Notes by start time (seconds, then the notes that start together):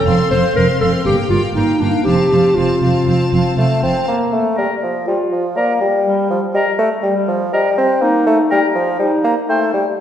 Already playing: A4
0.06 F1 F2 C4 F5 C6
0.31 F1 F2 C4 C5 F5 C6
0.56 F1 F2 C4 A#4 F5 C6
0.80 F1 F2 C4 A4 F5 C6
1.05 G1 G2 A#3 G4 F5 G5
1.30 G1 G2 A#3 F4 F5 G5
1.55 G1 G2 A#3 D#4 F5 G5
1.79 G1 G2 A#3 D4 F5 G5
2.04 F1 F2 C4 G4 F5 A5
2.31 F1 F2 C4 F5 A5
2.55 F1 F2 C4 F4 F5 A5
2.81 F1 F2 C4 F5 A5
3.07 F1 F2 C4 F5 A5
3.32 F1 F2 C4 F5 A5
3.57 F1 F2 A3 C4 F5 A5
3.82 F1 F2 C4 F5 A5
4.08 A#3
4.33 A3
4.57 G3 A#4 D5
4.83 F3
5.06 G3 F4
5.32 F3
5.56 A#3 A#4 D5
5.81 G3
6.05 G3
6.30 F3
6.54 G3 A#4 D#5
6.79 A3
7.03 G3
7.28 F3
7.53 G3 A#4 D#5
7.78 C4
8.02 A#3 D#4
8.27 A3
8.51 G3 A#4 G5
8.75 F3
8.99 G3 D#4
9.24 A#3
9.49 A3 C5 G5
9.74 G3